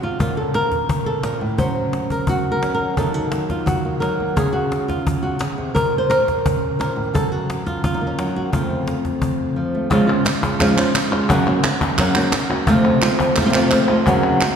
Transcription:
Already playing: C#4
0.02 C3 F4, cajon slap
0.19 A#2 A#3 C#4 F4, cajon bass
0.37 A4, cajon slap
0.54 A#4, cajon slap
0.72 cajon bass, cajon slap
0.89 cajon bass
1.06 A4
1.23 A#2 A#4, cajon slap
1.41 A2
1.58 F#3 C#4 F#4 C5, cajon bass
1.93 cajon slap
2.10 A#4, cajon bass
2.27 F#4, cajon bass
2.52 A#4
2.62 C#4, cajon slap
2.75 A#4
2.81 cajon slap
2.97 D#3 F#3 A#3 D#4 A4, cajon bass
3.14 F#4, cajon slap
3.32 A#3, cajon slap
3.50 F4, cajon bass, cajon slap
3.66 F#4, cajon bass
3.85 A#3
4.00 F#3 A#4, cajon slap
4.20 A#3
4.36 C#3 G#4, cajon bass
4.53 F#4
4.72 cajon slap
4.88 F4, cajon bass, cajon slap
5.07 cajon bass
5.22 F#4
5.39 C#3 G#4, cajon slap
5.58 C3
5.75 A#2 A#4, cajon bass
5.93 cajon slap
5.98 C5
6.10 A#4, cajon slap
6.28 cajon bass, cajon slap
6.46 C#4, cajon bass
6.79 A#2 A#4, cajon slap
6.96 A2, cajon slap
7.14 F#2 A4, cajon bass
7.32 F#4
7.50 cajon slap
7.66 F4, cajon bass, cajon slap
7.84 F4, cajon bass
7.94 D#4
8.01 A#3
8.07 C#4
8.18 F#3, cajon slap
8.36 F#4, cajon slap
8.52 F2 F3 A3 C4 F4, cajon bass
8.70 A3, cajon slap
8.88 cajon slap
9.05 cajon bass, cajon slap
9.22 cajon bass
9.56 F3
9.75 A3
9.90 C#3 F3 G#3 C#4 F4, cajon bass
10.07 G#3 C#4 F4, cajon slap
10.25 muted nylon-string guitar stroke, cajon slap, clap
10.42 G#3 C#4 F4, cajon bass, clap
10.59 C#3 F3 G#3 C#4 F4, cajon bass, cajon slap, clap
10.77 G#3 C#4 F4, cajon slap, clap
10.94 muted nylon-string guitar stroke, cajon slap, clap
11.11 G#3 C#4 F4, clap
11.29 F#2 C#3 F#3 A#3 C#4 F#4, cajon bass, clap
11.46 F#3 A#3 C#4 F#4, cajon slap, clap
11.63 muted nylon-string guitar stroke, cajon slap, clap
11.81 F#3 A#3 C#4 F#4, cajon bass, clap
11.98 F#2 C#3 F#3 A#3 C#4 F#4, cajon bass, cajon slap, clap
12.15 F#3 A#3 C#4 F#4, clap
12.32 muted nylon-string guitar stroke, cajon slap, clap
12.50 F#3 A#3 C#4 F#4, clap
12.67 F2 C3 F3 A3 C4 F4, cajon bass, clap
12.85 clap
13.02 F3 A3 C4 F4, cajon slap, clap
13.19 cajon bass, clap
13.36 muted nylon-string guitar stroke, cajon bass, cajon slap, clap
13.41 C3 F3 A3 C4 F4
13.45 C3 F3 A3 C4 F4
13.50 C3 F3 A3 C4 F4, clap
13.54 F2 C3 F3 A3 C4 F4
13.71 F3 A3 C4 F4, cajon slap, clap
13.88 F3 A3 C4 F4, clap
14.06 F#2 C#3 F#3 A#3 C#4 F#4, cajon bass, clap
14.23 clap
14.40 F#3 A#3 C#4 F#4, cajon slap, clap

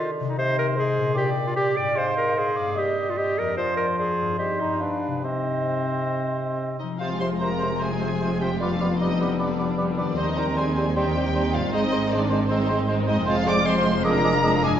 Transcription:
Already playing: D#3 C4 D#4 F4 D#5
0.00 D3
0.20 C3
0.25 C4 D#4
0.29 D#4
0.33 D#5
0.38 C3 C5 D#5
0.58 A#4
0.76 G#2 G#4 C5 D#5
0.98 A#2
1.03 D4
1.07 G4
1.12 D5 G5
1.16 A#2 G4
1.47 F4
1.55 G3 G4 D5 G5
1.76 G#2 D5
1.83 C4
1.88 F4
1.92 G#3 F5
1.96 C5 F5
2.17 A#4
2.36 G#4 C5 F5
2.57 G2 D5
2.64 A#3
2.68 G4
2.73 G3 D#5
2.78 G4
3.10 F4
3.16 G4 D#5
3.38 F2 A#4
3.43 C4
3.48 D4
3.53 D5
3.57 F3 C5 D5
3.77 A#4
3.97 G#4 C5 D5
4.21 G2
4.26 C4
4.30 D#4
4.35 G3 G4 C5 D#5
4.60 G2 D#4
4.68 B3
4.72 F4
4.77 G3 D4 G#4 B4 F5
5.07 C3
5.12 C4
5.16 D#4
5.20 C3 C4 G4 C5 D#5
6.79 D#4 D#5
6.83 F3
6.88 G#3
6.92 C4
6.96 F1 C3 C4 F4 C5 F5
7.01 F2 F3 G#3 C4 F4 C6
7.11 C3 G#3 F4
7.20 C3 F3 C4 C5 C6
7.31 C3 G#3 F4
7.40 C3 F3 C4 A#4 C5 A#5 C6
7.51 C3 G#3 F4
7.60 C3 F3 C4 C5 C6
7.71 C3 G#3 F4
7.79 C3 F3 C4 G#4 C5 G#5 C6
7.91 C3 G#3 F4
8.01 C3 F3 C4 C5 C6
8.11 C3 G#3 F4
8.20 C3 F3 C4 C5 C6
8.31 C3 G#3 F4
8.40 C3 F3 C4 G4 C5 G5 C6
8.44 F3
8.48 C3 G3 G#3 F4
8.53 B3
8.57 G3 B3 F4 G4 B4 F5
8.62 F3 G3 B3 D6
8.71 D3 F3 G3 D4
8.80 F3 G3 B3 B4 D6
8.91 D3 F3 G3 D4
8.99 F3 G3 B3 D#4 B4 D#5 D6
9.10 D3 F3 G3 D4
9.20 F3 G3 B3 B4 D6
9.30 D3 F3 G3 D4
9.38 G3 B3 D4 B4 D5 D6
9.42 F3 G3
9.48 D3 F3 G3 D4
9.57 F3 G3 B3 B4 D6
9.67 D3 F3 G3 D4
9.77 F3 G3 B3 B4 D6
9.87 D3 F3 G3 D4
9.97 D#3 F3 G3 B3 D4 B4 D5 D6
10.04 G3
10.08 D3 F3 G3 C4 D4
10.13 G3 C5
10.18 D#2 G3 C4 D#4 D#5 C6
10.28 D#3 C4 D#4
10.36 G3 C4 D#4 A#4 C5 A#5 C6
10.48 D#3 C4 D#4
10.56 G3 C4 D#4 G#4 C5 G#5 C6
10.66 D#3 C4 D#4
10.76 G3 C4 D#4 C5 C6
10.86 D#3 C4 D#4
10.96 G3 C4 D#4 G4 C5 G5 C6
11.04 D#3 C4 D#4
11.14 G3 C4 D#4 C5 C6
11.23 D#3 C4 D#4
11.33 G3 C4 D#4 C5 C6
11.42 D#3 C4 D#4
11.53 G#2 G3 C4 D#4 F4 C5 F5 C6
11.59 G#3 C4 D#4
11.64 D#3 C4
11.68 C4 D#4 C5
11.72 G#1 G#2 G#3 D#4 D#5 C6
11.81 D#3 C4 D#4
11.90 G#3 C4 D#4 C5 C6
11.99 D#3 C4 D#4
12.07 C4 D#4 C5 C6
12.12 G#3 D4 D5
12.16 C4 D#4
12.22 D#3 C4
12.27 C4 D#4 C6
12.31 G#3 C5
12.37 D#3 C4 D#4
12.47 G#3 C4 D#4 C5 C6
12.57 D#3 C4 D#4
12.66 G#3 C4 D#4 C5 C6
12.76 D#3 C4 D#4
12.86 G#3 C4 D#4 C5
12.90 C6
12.95 D#3 C4 D#4
13.04 G#3 C4 D#4 C5 D#5 C6
13.09 F2 D#4
13.14 D#3 G#3 C4 D#4
13.19 C4
13.23 F1 G#3 C4 F4 C5 F5 C6
13.27 F2 G#3 F4
13.33 F3 C4 F4
13.44 G#3 C4 F4 C5 C6 D6
13.48 D5
13.54 F3 C4 F4
13.64 G#3 C4 F4 C5 C6
13.75 F3 C4 F4
13.85 F2 G#3 C4 F4 C5 C6
13.91 G#3
13.95 F3 C4 D4 F4
14.00 G#3 G#4 A#4
14.04 F3 G#3 D4 G#4 A#5 D6
14.15 D3 F3 G#3 F4
14.24 F3 G#3 D4 G#4 D6
14.34 D3 F3 G#3 F4
14.43 F3 G#3 D4 G#4 D6
14.54 D3 F3 G#3 F4
14.63 G2 F3 G#3 D4 G#4 G#5 D6
14.70 D3 F3 G#3 A#3 F4
14.74 D4

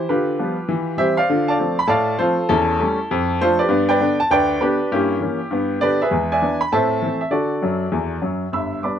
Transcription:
0.09 D3 F4 G4 B4
0.39 F3 G3 B3
0.69 E3
0.98 E3 G3 C4 G4 C5 E5
1.17 C5 D5 F5
1.30 D3 F4
1.48 D5 F5 A5
1.59 F3 A3 C4
1.79 B5
1.87 A2 D5 F5 A5
2.18 F3 A3 C4 F4 A4 C5
2.49 E2 C#4 E4 A4
2.80 G3 A3 C#4
3.11 F2
3.41 F3 A3 D4 F4 A4 C5
3.59 G4 B4 D5
3.69 G2 B3
3.89 B4 D5 G5
4.01 D3 B3 D4
4.20 A5
4.31 D2 B4 D5 G5
4.61 D3 B3 D4 G4 B4
4.92 G2 A#3 C#4 E4 G4
5.20 E3 A#3 C#4
5.51 G2 B3
5.81 D3 B3 D4 G4 B4 D5
6.02 G#4 B4 E5
6.11 E2 G#3
6.32 D5 E5 G#5
6.42 E3 B3 D4
6.61 B5
6.73 A2 C4 C5 E5 A5
7.02 E3 A3 C4
7.21 E5
7.31 D3 F#4 A4 D5
7.62 F#2 F#3
7.92 E2 E3
8.22 F#2 F#3
8.52 G1 G2 E5 B5 E6
8.83 G3 B3 D4 D5 B5 D6

